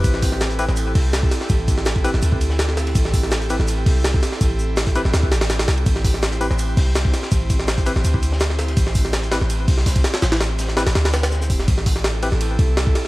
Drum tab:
RD |x---x-x-x-x-x-x-|x-x-x-x-x-x-x-xx|x---x-x-x-x-x-x-|x---x-x-x-xxxxxx|
HH |--o--x----o-----|-----x----------|--o--x----o-----|-----x----------|
SH |x-x-x-x-x---x-x-|x-x-x-x-x-x-x-x-|x-x-x-x-x---x-x-|x-x-x-x-x-x-x-x-|
SD |-o-oo--o--o-o-oo|---oo--o---ooooo|-o-oo--o--o-o-oo|----o--oo-ooooo-|
BD |o-o-------o--o--|o-o--o---o------|o-o-------o--o--|o----o---o------|

RD |x---x-x-x-x-x-x-|x-x-x-x-x-x-x-xx|x---x-x-x-x--xxx|xxx-x-xxxxxx----|
HH |--o--x----o-----|-----x----------|--o--x----o-o---|-----x--------o-|
SH |x-x-x-x-x---x-x-|x-x-x-x-x-x-x-x-|x-x-x-x-x---x-x-|x-x-x-x---xxxxx-|
SD |-o-oo--o--o-o-oo|---oo--o---ooooo|-o-oo-oo--ooo-oo|ooo-oooooooooo-o|
BD |o-o-------o--o--|o-o--o---o------|o-o-------o-oo--|--------------o-|

RD |x---x-x-x-x-x-x-|
HH |--o-------------|
SH |----------------|
SD |-o-oo--o----o-o-|
BD |o-o-------o--o--|